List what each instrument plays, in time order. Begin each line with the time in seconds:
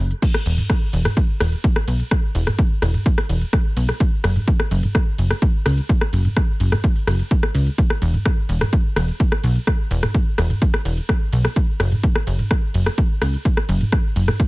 0.00 analog synth bass F#1
0.11 closed hi-hat
0.22 kick, closed hi-hat, crash, ride
0.34 cross-stick
0.46 analog synth bass E1, open hi-hat, ride
0.58 closed hi-hat, mid tom
0.70 kick, cross-stick, closed hi-hat, ride
0.93 analog synth bass E1, open hi-hat, ride
1.05 cross-stick, closed hi-hat, mid tom
1.17 kick, closed hi-hat, ride
1.40 analog synth bass E1, cross-stick, open hi-hat, ride
1.52 closed hi-hat
1.64 kick, closed hi-hat, ride
1.76 cross-stick
1.88 analog synth bass B1, open hi-hat, ride
2.00 closed hi-hat
2.11 kick, cross-stick, closed hi-hat, ride
2.35 analog synth bass E1, open hi-hat, ride
2.47 cross-stick, closed hi-hat, mid tom
2.59 kick, closed hi-hat, ride
2.82 analog synth bass E1, cross-stick, open hi-hat, ride
2.94 closed hi-hat, mid tom
3.06 kick, closed hi-hat, ride
3.18 cross-stick, open hi-hat
3.29 analog synth bass E1, open hi-hat, ride
3.42 closed hi-hat
3.53 kick, cross-stick, closed hi-hat, ride
3.77 analog synth bass B1, open hi-hat, ride
3.89 cross-stick, closed hi-hat
4.00 kick, closed hi-hat, ride
4.24 analog synth bass F#1, cross-stick, open hi-hat, ride
4.36 closed hi-hat, mid tom
4.48 kick, closed hi-hat, ride
4.60 cross-stick
4.71 analog synth bass F#1, open hi-hat, ride
4.83 closed hi-hat, mid tom
4.95 kick, cross-stick, closed hi-hat, ride
5.18 analog synth bass F#1, open hi-hat, ride
5.31 cross-stick, closed hi-hat
5.42 kick, closed hi-hat, ride
5.66 analog synth bass C#2, cross-stick, open hi-hat, ride
5.78 closed hi-hat
5.89 kick, closed hi-hat, ride
6.01 cross-stick
6.13 analog synth bass F#1, open hi-hat, ride
6.25 closed hi-hat, mid tom
6.37 kick, cross-stick, closed hi-hat, ride
6.60 analog synth bass F#1, open hi-hat, ride
6.72 cross-stick, closed hi-hat, mid tom
6.84 kick, closed hi-hat, ride
6.96 open hi-hat
7.07 analog synth bass F#1, cross-stick, open hi-hat, ride
7.19 closed hi-hat
7.31 kick, closed hi-hat, ride
7.43 cross-stick
7.55 analog synth bass C#2, open hi-hat, ride
7.67 closed hi-hat
7.78 kick, closed hi-hat, ride
7.90 cross-stick
8.02 analog synth bass E1, open hi-hat, ride
8.14 closed hi-hat, mid tom
8.26 kick, cross-stick, closed hi-hat, ride
8.49 analog synth bass E1, open hi-hat, ride
8.61 cross-stick, closed hi-hat, mid tom
8.73 kick, closed hi-hat, ride
8.96 analog synth bass E1, cross-stick, open hi-hat, ride
9.08 closed hi-hat
9.20 kick, closed hi-hat, ride
9.32 cross-stick
9.44 analog synth bass B1, open hi-hat, ride
9.56 closed hi-hat
9.67 kick, cross-stick, closed hi-hat, ride
9.91 analog synth bass E1, open hi-hat, ride
10.03 cross-stick, closed hi-hat, mid tom
10.15 kick, closed hi-hat, ride
10.38 analog synth bass E1, cross-stick, open hi-hat, ride
10.50 closed hi-hat, mid tom
10.62 kick, closed hi-hat, ride
10.74 cross-stick, open hi-hat
10.85 analog synth bass E1, open hi-hat, ride
10.97 closed hi-hat
11.09 kick, cross-stick, closed hi-hat, ride
11.33 analog synth bass B1, open hi-hat, ride
11.45 cross-stick, closed hi-hat
11.56 kick, closed hi-hat, ride
11.80 analog synth bass F#1, cross-stick, open hi-hat, ride
11.92 closed hi-hat, mid tom
12.04 kick, closed hi-hat, ride
12.16 cross-stick
12.27 analog synth bass F#1, open hi-hat, ride
12.39 closed hi-hat, mid tom
12.51 kick, cross-stick, closed hi-hat, ride
12.74 analog synth bass F#1, open hi-hat, ride
12.86 cross-stick, closed hi-hat
12.98 kick, closed hi-hat, ride
13.22 analog synth bass C#2, cross-stick, open hi-hat, ride
13.34 closed hi-hat
13.45 kick, closed hi-hat, ride
13.57 cross-stick
13.69 analog synth bass F#1, open hi-hat, ride
13.81 closed hi-hat, mid tom
13.92 kick, cross-stick, closed hi-hat, ride
14.16 analog synth bass F#1, open hi-hat, ride
14.28 cross-stick, closed hi-hat, mid tom
14.40 kick, closed hi-hat, ride